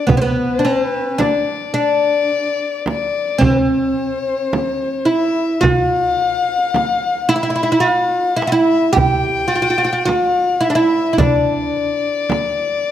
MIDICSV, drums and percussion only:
0, 0, Header, 1, 3, 480
1, 0, Start_track
1, 0, Tempo, 1111111
1, 41, Time_signature, 10, 3, 24, 8
1, 5579, End_track
2, 0, Start_track
2, 0, Title_t, "Darbuka"
2, 41, Note_on_c, 9, 64, 92
2, 84, Note_off_c, 9, 64, 0
2, 521, Note_on_c, 9, 63, 69
2, 564, Note_off_c, 9, 63, 0
2, 1003, Note_on_c, 9, 62, 23
2, 1047, Note_off_c, 9, 62, 0
2, 1242, Note_on_c, 9, 63, 73
2, 1285, Note_off_c, 9, 63, 0
2, 1478, Note_on_c, 9, 64, 85
2, 1521, Note_off_c, 9, 64, 0
2, 1959, Note_on_c, 9, 63, 71
2, 2002, Note_off_c, 9, 63, 0
2, 2438, Note_on_c, 9, 64, 78
2, 2481, Note_off_c, 9, 64, 0
2, 2682, Note_on_c, 9, 62, 24
2, 2725, Note_off_c, 9, 62, 0
2, 2920, Note_on_c, 9, 63, 72
2, 2963, Note_off_c, 9, 63, 0
2, 3400, Note_on_c, 9, 62, 27
2, 3443, Note_off_c, 9, 62, 0
2, 3639, Note_on_c, 9, 63, 77
2, 3682, Note_off_c, 9, 63, 0
2, 3879, Note_on_c, 9, 64, 83
2, 3923, Note_off_c, 9, 64, 0
2, 4358, Note_on_c, 9, 63, 65
2, 4401, Note_off_c, 9, 63, 0
2, 4840, Note_on_c, 9, 64, 86
2, 4883, Note_off_c, 9, 64, 0
2, 5081, Note_on_c, 9, 62, 30
2, 5124, Note_off_c, 9, 62, 0
2, 5322, Note_on_c, 9, 63, 72
2, 5365, Note_off_c, 9, 63, 0
2, 5579, End_track
3, 0, Start_track
3, 0, Title_t, "Frame drum"
3, 37, Note_on_c, 9, 64, 78
3, 80, Note_off_c, 9, 64, 0
3, 517, Note_on_c, 9, 64, 64
3, 560, Note_off_c, 9, 64, 0
3, 1236, Note_on_c, 9, 64, 62
3, 1279, Note_off_c, 9, 64, 0
3, 1474, Note_on_c, 9, 64, 83
3, 1517, Note_off_c, 9, 64, 0
3, 1957, Note_on_c, 9, 64, 60
3, 2000, Note_off_c, 9, 64, 0
3, 2433, Note_on_c, 9, 64, 86
3, 2476, Note_off_c, 9, 64, 0
3, 2914, Note_on_c, 9, 64, 61
3, 2957, Note_off_c, 9, 64, 0
3, 3873, Note_on_c, 9, 64, 79
3, 3916, Note_off_c, 9, 64, 0
3, 4353, Note_on_c, 9, 64, 62
3, 4396, Note_off_c, 9, 64, 0
3, 4830, Note_on_c, 9, 64, 74
3, 4873, Note_off_c, 9, 64, 0
3, 5312, Note_on_c, 9, 64, 71
3, 5355, Note_off_c, 9, 64, 0
3, 5579, End_track
0, 0, End_of_file